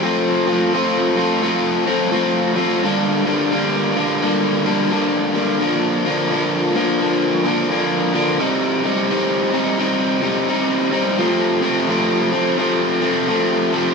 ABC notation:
X:1
M:4/4
L:1/8
Q:"Swing" 1/4=86
K:Fmix
V:1 name="Overdriven electric guitar" clef=bass
[F,A,CF] [F,A,CF] [F,A,CF] [F,A,CF] [F,A,CF] [F,A,CF] [F,A,CF] [F,A,CF] | [G,,D,G,B,D] [G,,D,G,B,D] [G,,D,G,B,D] [G,,D,G,B,D] [G,,D,G,B,D] [G,,D,G,B,D] [G,,D,G,B,D] [G,,D,G,B,D] | [B,,D,F,B,D] [B,,D,F,B,D] [B,,D,F,B,D] [B,,D,F,B,D] [B,,D,F,B,D] [B,,D,F,B,D] [B,,D,F,B,D] [B,,D,F,B,D] | [C,G,CE] [C,G,CE] [C,G,CE] [C,G,CE] [C,G,CE] [C,G,CE] [C,G,CE] [C,G,CE] |
[F,,C,F,A,C] [F,,C,F,A,C] [F,,C,F,A,C] [F,,C,F,A,C] [F,,C,F,A,C] [F,,C,F,A,C] [F,,C,F,A,C] [F,,C,F,A,C] |]